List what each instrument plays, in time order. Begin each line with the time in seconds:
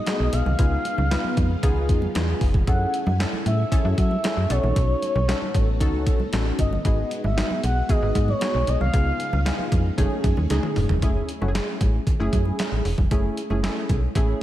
Already playing: string machine G#3 B3 F#4, analog synth lead D#5
0.06 analog polysynth A3 D#4 F#4 G#4, snare, clap, closed hi-hat
0.13 analog polysynth B3
0.20 fm bass B1
0.33 fm bass B1, analog synth lead F5, closed hi-hat, muted conga
0.46 fm bass C2, high conga, low conga
0.58 fm bass C#2, string machine C#3 D#4 F4, analog polysynth B3 D#4 F4 G#4, kick, closed hi-hat, muted conga
0.85 closed hi-hat, muted conga
0.98 fm bass C#2, high conga
1.11 analog polysynth B3 D#4 F4 B4, snare, clap, closed hi-hat
1.24 high conga
1.37 fm bass F2, kick, closed hi-hat, high conga
1.63 fm bass C#2, analog polysynth B3 D#4 F4 G#4, kick, closed hi-hat, low conga
1.89 fm bass F2, kick, closed hi-hat, muted conga
2.02 high conga
2.15 fm bass E2, analog polysynth B3 D#4 F4 G#4, snare, clap, closed hi-hat
2.41 fm bass F1, kick, open hi-hat
2.54 kick, high conga, low conga
2.67 fm bass F#2, string machine F#3 A3 C#4 E4 G#5, analog polysynth C#4 E4 G#4 A4, analog synth lead F#5, kick, closed hi-hat
2.94 closed hi-hat
3.07 fm bass F#2, high conga
3.19 analog polysynth C#4 E4 G#4 A4, snare, clap, closed hi-hat, muted conga
3.33 high conga
3.46 fm bass A2, analog synth lead E5, closed hi-hat, muted conga, high conga
3.71 analog polysynth C#4 E4 G#4 A4, kick, closed hi-hat, muted conga, low conga
3.85 fm bass F#2
3.98 fm bass F#3, analog synth lead E5, kick, closed hi-hat, muted conga
4.11 high conga
4.24 analog polysynth C#4 E4 G#4 A4, snare, clap, closed hi-hat, muted conga
4.37 fm bass F#2
4.50 fm bass B1, string machine A3 B3 D#4, analog polysynth C#4 D#4 F#4 A4, analog synth lead C#5, closed hi-hat
4.63 fm bass A#1, high conga, low conga
4.76 fm bass B1, kick, closed hi-hat, muted conga
5.02 closed hi-hat, muted conga
5.15 fm bass B1, high conga
5.28 analog polysynth C#4 D#4 F#4 A4, snare, clap, closed hi-hat
5.42 high conga
5.55 fm bass A1, kick, closed hi-hat, muted conga, high conga
5.80 fm bass C#2, analog polysynth C#4 D#4 F#4 A4, kick, closed hi-hat, muted conga, low conga
6.07 fm bass B1, kick, closed hi-hat, muted conga
6.20 high conga
6.33 fm bass A1, analog polysynth C#4 D#4 F#4 A4, snare, clap, closed hi-hat
6.59 fm bass G1, analog synth lead D#5, kick, closed hi-hat, muted conga
6.73 high conga, low conga
6.84 fm bass G#1, string machine G#3 F#4, analog polysynth B3 D#4 F#4 G#4, analog synth lead D#5, kick, closed hi-hat
7.11 closed hi-hat
7.24 fm bass G#1, analog synth lead E5, high conga
7.37 analog polysynth B3 D#4 F#4 G#4, snare, clap, closed hi-hat, muted conga
7.50 high conga
7.63 fm bass B1, analog synth lead F#5, closed hi-hat, muted conga, high conga
7.89 analog polysynth B3 D#4 F#4 G#4, analog synth lead D#5, kick, closed hi-hat, muted conga, low conga
8.02 fm bass G#1
8.15 fm bass G#2, kick, closed hi-hat, muted conga
8.28 analog synth lead C#5, high conga
8.41 analog polysynth B3 D#4 F#4 G#4, snare, clap, closed hi-hat, muted conga
8.54 fm bass B1
8.67 fm bass B1, analog synth lead D#5, closed hi-hat, muted conga
8.81 fm bass C2, analog synth lead F5, high conga, low conga
8.93 fm bass C#2, string machine C#3 D#4 F4, analog polysynth B3 D#4 F4 G#4, kick, closed hi-hat, muted conga
9.20 closed hi-hat, muted conga
9.33 fm bass C#2, high conga
9.46 analog polysynth B3 D#4 E4 G#4, snare, clap, closed hi-hat, muted conga
9.52 analog polysynth F4
9.59 high conga
9.72 fm bass F2, kick, closed hi-hat, high conga, low conga
9.98 fm bass F#1, string machine F#3 A3 C#4 G#4, analog polysynth A3 C#4 D#4 G#4, kick, closed hi-hat, muted conga, low conga
10.24 fm bass F#2, kick, closed hi-hat, muted conga
10.37 fm bass D#2, high conga
10.50 fm bass C#2, analog polysynth A3 C#4 D#4 G#4, snare, closed hi-hat
10.63 high tom
10.76 fm bass E1, mid tom, open hi-hat
10.89 fm bass F1, floor tom, high conga, low conga
11.02 fm bass F#1, analog polysynth A3 C#4 E4 G#4, kick, closed hi-hat
11.29 closed hi-hat
11.41 fm bass F#1, analog polysynth A3 C#4 E4 F#4, high conga
11.48 analog polysynth G#4
11.55 snare, clap, closed hi-hat
11.81 fm bass A1, kick, closed hi-hat, muted conga, high conga
12.07 kick, closed hi-hat, low conga
12.20 fm bass F#1, analog polysynth A3 C#4 E4 G#4
12.33 fm bass F#2, kick, closed hi-hat, muted conga
12.45 high conga
12.59 snare, clap, closed hi-hat, muted conga
12.72 fm bass A1
12.85 fm bass E1, open hi-hat
12.98 fm bass F1, kick, high conga, low conga
13.11 fm bass F#1, analog polysynth A3 C#4 E4 G#4, kick, closed hi-hat, muted conga
13.37 closed hi-hat
13.50 fm bass F#1, analog polysynth A3 C#4 E4 G#4, high conga
13.63 analog polysynth G#3 C#4 E4 G#4, snare, clap, closed hi-hat, muted conga
13.69 analog polysynth A3
13.89 fm bass B1, kick, closed hi-hat, muted conga, high conga
14.15 fm bass A1, analog polysynth A3 C#4 E4 G#4, kick, closed hi-hat, muted conga, low conga